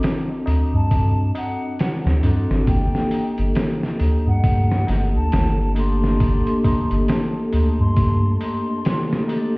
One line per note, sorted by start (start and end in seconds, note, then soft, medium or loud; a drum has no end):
0.00 2.23 C4 medium
0.00 2.23 D4 medium
0.00 2.24 F#4 medium
0.00 2.25 A4 loud
0.00 open hi-hat medium
0.00 tabla na soft
0.04 snare loud
0.29 tabla na soft
0.46 0.70 D2 medium
0.46 open hi-hat medium
0.46 tabla na medium
0.72 1.32 G2 medium
0.72 1.31 A5 medium
0.72 tabla na soft
0.91 kick medium
0.91 open hi-hat medium
0.91 tabla na medium
1.35 1.99 F#5 medium
1.35 open hi-hat medium
1.35 tabla na medium
1.61 tabla na soft
1.79 snare loud
1.79 open hi-hat medium
1.79 tabla na soft
2.05 2.21 D2 loud
2.05 snare medium
2.05 tabla na soft
2.23 2.47 G2 medium
2.23 2.63 C4 medium
2.23 2.63 D4 medium
2.23 2.64 F#4 medium
2.23 2.64 A4 loud
2.23 open hi-hat medium
2.23 tabla na medium
2.50 2.65 G1 medium
2.50 snare soft
2.50 tabla na soft
2.66 2.91 G1 medium
2.66 9.57 A3 medium
2.66 5.71 A#3 medium
2.66 5.72 D4 medium
2.66 5.73 G4 medium
2.66 9.57 A4 medium
2.66 3.31 G5 medium
2.66 kick loud
2.66 open hi-hat medium
2.66 tabla na medium
2.70 5.73 A4 loud
2.95 snare soft
3.11 open hi-hat medium
3.11 tabla na medium
3.38 3.54 G1 loud
3.38 closed hi-hat soft
3.38 tabla na soft
3.55 snare loud
3.55 open hi-hat medium
3.55 tabla na soft
3.83 snare soft
3.99 4.23 D2 loud
3.99 open hi-hat medium
3.99 tabla na medium
4.27 4.85 G2 medium
4.27 5.05 F#5 medium
4.27 tabla na soft
4.44 kick loud
4.44 open hi-hat medium
4.44 tabla na soft
4.71 snare soft
4.87 5.16 G1 medium
4.87 snare soft
4.87 open hi-hat medium
4.87 tabla na medium
5.15 5.30 D2 loud
5.15 5.72 A5 medium
5.15 tabla na soft
5.32 6.42 G1 medium
5.32 snare loud
5.32 open hi-hat medium
5.32 tabla na soft
5.58 tabla na soft
5.75 6.16 A#3 medium
5.75 6.16 D4 medium
5.75 6.17 G4 medium
5.75 6.17 A4 loud
5.75 6.59 C6 medium
5.75 open hi-hat medium
5.75 tabla na medium
6.03 snare soft
6.03 tabla na soft
6.19 9.24 A#3 medium
6.19 9.25 D4 medium
6.19 9.26 G4 medium
6.19 kick loud
6.19 open hi-hat medium
6.19 tabla na soft
6.23 9.26 A4 loud
6.47 closed hi-hat soft
6.64 7.06 C6 medium
6.64 kick medium
6.64 open hi-hat medium
6.64 tabla na medium
6.91 7.07 G1 medium
6.91 closed hi-hat soft
6.91 tabla na soft
7.08 snare loud
7.08 open hi-hat medium
7.08 tabla na soft
7.53 7.76 D2 loud
7.53 open hi-hat medium
7.53 tabla na medium
7.79 8.38 G2 medium
7.79 8.36 C6 loud
7.79 tabla na soft
7.97 kick loud
7.97 open hi-hat medium
7.97 tabla na soft
8.40 9.05 C6 loud
8.40 open hi-hat medium
8.40 tabla na medium
8.67 tabla na soft
8.84 snare loud
8.84 open hi-hat medium
8.84 tabla na soft
9.11 snare medium
9.11 tabla na soft
9.28 9.57 A#3 medium
9.28 9.57 D4 medium
9.28 9.57 G4 medium
9.28 9.57 A4 loud
9.28 open hi-hat medium
9.28 tabla na medium